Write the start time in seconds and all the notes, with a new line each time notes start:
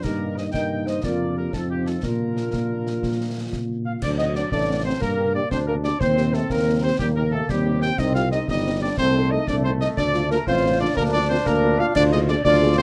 0.03 G2 D#3 A#3 D#4 G4 A#4, concert bass drum, snare, crash
0.37 C5 D#5, snare
0.52 G2 D#3 A#3 D#4 D#5 G5, concert bass drum, snare
0.86 C5 D#5, snare
1.02 F2 F3 A#3 D4 F4 A#4 D5, concert bass drum, snare
1.37 G4 A#4
1.53 F2 F3 C4 D#4 F4 A4, concert bass drum, snare
1.70 D#4 G4
1.86 F4 A4, snare
2.03 A#2 F3 A#3 D4 F4 A#4, concert bass drum, snare
2.37 snare
2.52 A#2, concert bass drum, snare
2.87 snare
3.02 A#2, concert bass drum, snare
3.52 A#2, concert bass drum, snare
3.85 F4 F5
4.02 D2 F#3 D4 D5, concert bass drum, snare, crash
4.18 C4 D4 D#4 F#4 D#5, snare
4.35 C4 D4 F#4 D5, snare
4.51 A1 A3 D4 D5, concert bass drum, snare
4.69 C4 D4 F#4
4.84 C4 D4 F#4 C5
5.01 G2 A#3 A#4, concert bass drum, snare
5.18 A#3 D4 G4
5.34 A#3 D4 G4 D5
5.50 D2 C4 D4 C5, concert bass drum, snare
5.67 A#3 D4 G4 A#4
5.83 A#3 D4 G4 D5, snare
6.00 D#2 C4 C5, concert bass drum, snare
6.16 A#3 D#4 G4, snare
6.33 A3 A#3 D#4 G4 A4, snare
6.50 D#2 A#3 A#4, concert bass drum, snare
6.66 A#3 D#4 G4
6.82 A#3 C4 D#4 G4 C5
6.99 D#2 G3 A#3 G4, concert bass drum, snare
7.15 A#3 D#4 G4 A#4
7.32 A3 A#3 D#4 G4 A4
7.49 D#2 G3 C4 G4, concert bass drum, snare
7.65 A#3 D#4 G4
7.81 A#3 D#4 G4 G5, snare
7.98 C2 C4 D#4 D#5, concert bass drum, snare, crash
8.15 C4 D#4 F4 G4 F5, snare
8.31 C4 D#4 G4 D#5, snare
8.48 G1 G3 D#4 D#5, concert bass drum, snare
8.64 C4 D#4 G4
8.81 C4 D4 D#4 G4 D5
8.97 C2 A3 C4 C5, concert bass drum, snare
9.13 A3 D#4 A4
9.30 A3 D#4 A4 D#5
9.47 C2 A3 D4 D5, concert bass drum, snare
9.64 A3 C4 D#4 A4 C5
9.80 A3 D#4 A4 D#5, snare
9.97 D2 D4 D5, concert bass drum, snare
10.14 A3 D4 F4, snare
10.30 A3 A#3 D4 F4 A#4, snare
10.47 A1 C4 F4 C5, concert bass drum, snare
10.64 A3 D4 F4
10.80 A3 D4 F4 D5
10.96 D2 A#3 D4 A#4, concert bass drum, snare
11.13 A#3 D4 F4 D5
11.29 A#3 C4 D4 F4 C5
11.45 D2 A#3 A#4, concert bass drum, snare
11.63 A#3 D4 F4
11.79 A#3 D4 F4 F5
11.95 D2 D4 F4 D5, concert bass drum, snare, crash
12.12 A#3 D#4 F4 G#4 D#5, snare
12.28 A#3 D4 F4 G#4 D5, snare
12.45 D2 D4 F4 D5, concert bass drum, snare
12.62 A#3 F4 G#4
12.77 A#3 C4 F4 G#4 C5